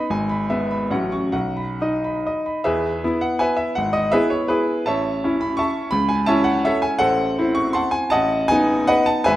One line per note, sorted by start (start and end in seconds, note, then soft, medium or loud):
0.10 0.47 G#1 medium
0.10 0.40 G#5 medium
0.29 0.61 B5 medium
0.50 0.87 B3 medium
0.50 0.82 E5 medium
0.71 0.91 B5 medium
0.90 1.32 A1 medium
0.90 1.29 F#3 soft
0.90 1.29 C#4 soft
0.90 1.24 F#5 medium
1.12 1.33 C#6 soft
1.32 1.77 B1 medium
1.32 1.69 F#5 medium
1.57 1.93 B5 soft
1.81 2.61 D#4 soft
1.81 2.16 D#5 medium
2.04 2.37 B5 soft
2.27 2.58 D#5 soft
2.46 2.65 B5 soft
2.64 3.02 E2 medium
2.64 3.18 G#4 medium
2.64 3.18 B4 medium
2.64 3.21 E5 medium
3.04 3.73 B3 soft
3.04 3.73 E4 medium
3.21 3.40 F#5 medium
3.39 3.57 B4 medium
3.39 3.55 E5 medium
3.39 3.58 G#5 medium
3.57 3.75 E5 medium
3.75 4.13 G#1 medium
3.75 3.94 F#5 medium
3.93 4.12 D#5 medium
4.12 4.82 B3 medium
4.12 4.48 E4 medium
4.12 4.30 G#4 medium
4.12 4.30 B4 medium
4.12 4.31 E5 medium
4.30 4.49 C#5 medium
4.48 4.83 E4 medium
4.48 4.83 G#4 medium
4.48 4.85 B4 medium
4.86 5.22 A1 medium
4.86 5.38 C#5 medium
4.86 5.38 E5 medium
4.86 5.41 A5 medium
5.24 5.90 C#4 medium
5.24 5.90 E4 medium
5.41 5.59 B5 medium
5.57 5.90 E5 medium
5.57 5.90 A5 medium
5.57 5.92 C#6 medium
5.91 6.27 C#2 medium
5.91 6.09 B5 loud
6.09 6.28 G#5 medium
6.26 6.98 C#4 medium
6.26 6.98 E4 medium
6.26 6.46 C#5 medium
6.26 6.45 E5 medium
6.26 6.46 A5 loud
6.44 6.64 F#5 medium
6.65 6.83 A4 medium
6.65 6.83 C#5 medium
6.65 6.84 E5 medium
6.82 7.01 G#5 medium
6.99 7.38 A1 medium
6.99 7.53 A4 medium
6.99 7.53 C5 medium
6.99 7.57 F#5 loud
7.39 8.09 C4 medium
7.39 8.09 E4 medium
7.55 7.75 C#6 medium
7.73 7.93 F#5 medium
7.73 7.93 A5 medium
7.73 7.93 C6 medium
7.91 8.11 G#5 medium
8.10 8.50 A1 medium
8.10 8.47 D#5 medium
8.10 8.47 F#5 medium
8.10 8.49 A5 loud
8.48 9.23 B3 medium
8.48 9.23 D#4 medium
8.48 8.88 G#5 loud
8.87 9.06 B4 medium
8.87 9.06 D#5 medium
8.87 9.07 F#5 loud
9.06 9.25 A5 loud
9.24 9.36 G#1 medium
9.24 9.36 B4 medium
9.24 9.36 E5 medium
9.24 9.36 G#5 loud